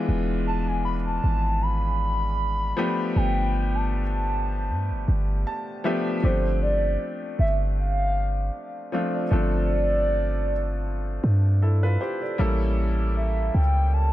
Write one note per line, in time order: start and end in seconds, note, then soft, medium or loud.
0.00 0.93 E3 loud
0.00 0.93 G#3 medium
0.00 0.93 B3 medium
0.00 0.94 D4 medium
0.00 0.94 F4 loud
0.08 1.19 E1 loud
0.47 0.69 A5 loud
0.67 0.84 G#5 loud
0.85 0.94 B5 loud
1.06 1.64 A5 loud
1.24 2.73 G#1 loud
1.62 3.18 B5 loud
2.77 4.01 F3 loud
2.77 4.01 A3 medium
2.77 4.01 B3 medium
2.77 4.01 D4 medium
2.77 4.02 G4 loud
3.16 4.71 G1 loud
3.16 3.77 G5 loud
3.75 3.92 A5 medium
3.93 5.81 A5 medium
4.70 4.92 G2 loud
4.91 5.07 G1 loud
5.08 5.45 G1 loud
5.47 5.82 A5 medium
5.84 6.15 F3 loud
5.84 6.15 A3 medium
5.84 6.15 B3 medium
5.84 6.16 D4 medium
5.84 6.16 G4 loud
5.84 6.21 E5 medium
6.22 6.97 G1 loud
6.22 7.43 F3 medium
6.22 7.43 A3 medium
6.22 7.43 C4 medium
6.22 7.43 D4 medium
6.22 7.44 G4 medium
6.22 6.59 C5 loud
6.63 7.35 D5 loud
7.39 8.50 G1 loud
7.39 7.54 E5 loud
7.78 8.71 F5 loud
8.92 9.23 F3 medium
8.92 9.23 A3 medium
8.92 9.23 C4 medium
8.92 9.24 D4 medium
8.92 9.24 F4 medium
9.14 11.40 D5 loud
9.31 11.19 G1 loud
9.31 10.50 F3 medium
9.31 10.51 A3 medium
9.31 10.51 C4 medium
9.31 10.51 D4 medium
9.31 10.51 A4 medium
11.24 11.97 G2 loud
11.62 11.82 E4 medium
11.62 11.82 A4 medium
11.83 12.00 F4 medium
11.83 12.00 B4 medium
12.01 12.20 G4 medium
12.01 12.20 C5 medium
12.21 12.39 A4 medium
12.21 12.58 D5 medium
12.38 13.50 A1 loud
12.38 13.58 G3 medium
12.38 13.58 A#3 medium
12.38 13.59 C#4 medium
12.38 13.59 E4 medium
12.38 13.59 A4 loud
13.16 13.52 E5 medium
13.54 14.13 C#2 loud
13.54 13.95 G5 loud
13.93 14.13 A5 loud